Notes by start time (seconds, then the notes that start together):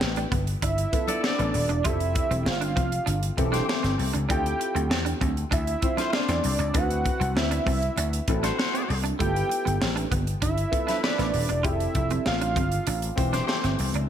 Already playing: B3 E4 F4 A4 G5
0.01 A1, muted clean electric guitar stroke, snare, muted conga
0.16 D4, closed hi-hat
0.32 G1 B3, kick, closed hi-hat, high conga, low conga
0.47 closed hi-hat
0.62 G1 D4 E5, kick, closed hi-hat, muted conga, low conga
0.78 closed hi-hat
0.92 B3 E4 F4 A4, muted clean electric guitar stroke, kick, closed hi-hat, muted conga
1.07 B3 D4 A4 D5, closed hi-hat, high conga
1.23 B3 A4 D5, snare
1.39 A1 B3, closed hi-hat
1.54 D#1, muted clean electric guitar stroke, open hi-hat, muted conga
1.69 E1 D4, closed hi-hat
1.84 F1 C4 E4 F4 G4 A4 E5, kick, closed hi-hat
2.00 closed hi-hat
2.15 muted clean electric guitar stroke, kick, closed hi-hat, muted conga
2.31 E1 C4, closed hi-hat, high conga
2.46 G1 F5, muted clean electric guitar stroke, snare, muted conga
2.61 D4, closed hi-hat
2.76 F1 C4, kick, closed hi-hat, muted conga, high conga, low conga
2.92 closed hi-hat
3.06 G1 D4, closed hi-hat, muted conga, low conga
3.23 closed hi-hat
3.37 E1 E3 C4 G4 A4, muted clean electric guitar stroke, kick, closed hi-hat, muted conga
3.52 A3 D4 G4 C5, snare, closed hi-hat, high conga
3.68 A3 G4 C5, snare, muted conga
3.83 G1 C4, snare, closed hi-hat
3.98 C2, muted clean electric guitar stroke, open hi-hat, muted conga
4.13 C#2 D4, closed hi-hat
4.29 D2 C4 D4 E4 F4 A4 G5, kick, closed hi-hat, muted conga
4.46 closed hi-hat
4.60 muted clean electric guitar stroke, closed hi-hat
4.75 D2 C4, closed hi-hat, high conga
4.90 E2, muted clean electric guitar stroke, snare, muted conga
5.05 D4, closed hi-hat
5.21 D2 C4, kick, closed hi-hat, muted conga, high conga, low conga
5.37 closed hi-hat
5.51 D2 D4 E5, kick, closed hi-hat, muted conga, low conga
5.67 closed hi-hat
5.82 C4 E4 F4 C5, muted clean electric guitar stroke, kick, closed hi-hat, muted conga
5.97 A3 D4 F4 C5, snare, closed hi-hat, high conga
6.13 A3 F4 C5 D5, snare, muted conga
6.29 E2 C4, snare, closed hi-hat
6.44 C2, muted clean electric guitar stroke, open hi-hat, muted conga
6.59 C#2 D4, closed hi-hat
6.74 D2 C4 D4 E4 F#4 B4 F#5, kick, closed hi-hat, muted conga
6.91 closed hi-hat
7.04 muted clean electric guitar stroke, kick, closed hi-hat, muted conga
7.20 C2 C4, closed hi-hat, high conga
7.35 D2 E5, muted clean electric guitar stroke, snare, muted conga
7.51 D4, closed hi-hat
7.66 C2 C4, kick, open hi-hat, high conga, low conga
7.83 closed hi-hat
7.96 D2 D4, closed hi-hat, muted conga, low conga
8.13 closed hi-hat
8.28 A1 C4 E4 F#4 A4, muted clean electric guitar stroke, kick, closed hi-hat
8.43 A3 D4 F#4 C5, snare, closed hi-hat, high conga
8.59 A3 F#4 C5, snare, muted conga
8.74 C4, closed hi-hat
8.89 C2, muted clean electric guitar stroke, open hi-hat, muted conga
9.04 D4, closed hi-hat
9.19 G1 A3 E4 F4 A4 G5, kick, closed hi-hat, muted conga
9.26 B3
9.36 closed hi-hat
9.49 muted clean electric guitar stroke, closed hi-hat, muted conga
9.65 G1 B3, closed hi-hat, high conga
9.81 A1, muted clean electric guitar stroke, snare
9.96 D4, closed hi-hat
10.11 G1 B3, kick, closed hi-hat, high conga, low conga
10.27 closed hi-hat
10.42 G1 D4 E5, kick, closed hi-hat, low conga
10.58 closed hi-hat
10.71 B3 E4 F4 A4, muted clean electric guitar stroke, kick, closed hi-hat, muted conga
10.87 F3 D4 E4 B4, snare, closed hi-hat, high conga
11.03 F3 E4 B4 D5, snare, muted conga
11.18 A1 B3, snare, closed hi-hat
11.34 D#1, muted clean electric guitar stroke, open hi-hat, muted conga
11.49 E1 D4, closed hi-hat
11.63 F1 C4 E4 F4 G4 G#4 E5, kick, closed hi-hat
11.71 A4
11.80 closed hi-hat
11.95 F1, muted clean electric guitar stroke, kick, closed hi-hat, muted conga
12.10 C4, closed hi-hat, high conga
12.26 A1 F5, muted clean electric guitar stroke, snare, muted conga
12.41 D4, closed hi-hat
12.56 G1 C4, kick, closed hi-hat, muted conga, high conga, low conga
12.72 closed hi-hat
12.87 A1 D4, closed hi-hat, muted conga, low conga
13.02 closed hi-hat
13.16 E1 E3 C4 G4 C5, muted clean electric guitar stroke, kick, closed hi-hat, muted conga
13.33 A3 D4 G4 C5, snare, closed hi-hat, high conga
13.48 A3 G4 C5, snare
13.64 G1 C4, snare, closed hi-hat
13.79 C2, muted clean electric guitar stroke, open hi-hat, muted conga
13.94 C#2 D4, closed hi-hat